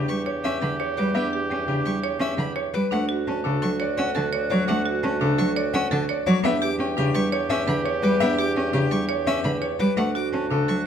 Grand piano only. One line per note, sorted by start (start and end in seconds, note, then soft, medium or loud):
0.00 0.14 G4 loud
0.27 0.50 C#5 medium
0.45 0.68 E5 loud
0.81 1.03 C#5 medium
0.98 1.21 B4 medium
1.15 1.38 E5 medium
1.50 1.73 G5 medium
1.68 1.91 G4 loud
2.03 2.26 C#5 medium
2.21 2.44 E5 loud
2.56 2.79 C#5 medium
2.74 2.97 B4 loud
2.92 3.15 F#5 loud
3.28 3.50 A5 medium
3.45 3.68 A4 loud
3.81 4.03 D5 medium
3.99 4.21 F#5 loud
4.34 4.56 D5 medium
4.52 4.74 C#5 loud
4.68 4.91 F#5 loud
5.04 5.27 A5 loud
5.21 5.44 A4 loud
5.56 5.79 D5 loud
5.73 5.97 F#5 loud
6.10 6.33 D5 medium
6.27 6.50 C#5 loud
6.45 6.68 E5 loud
6.80 7.03 G5 loud
6.98 7.21 G4 loud
7.33 7.56 C#5 loud
7.50 7.73 E5 loud
7.85 8.08 C#5 medium
8.03 8.26 B4 loud
8.20 8.44 E5 loud
8.56 8.79 G5 medium
8.73 8.97 G4 loud
9.09 9.32 C#5 medium
9.27 9.50 E5 loud
9.62 9.85 C#5 medium
9.80 10.03 B4 loud
9.97 10.20 F#5 loud
10.33 10.56 A5 medium
10.51 10.74 A4 loud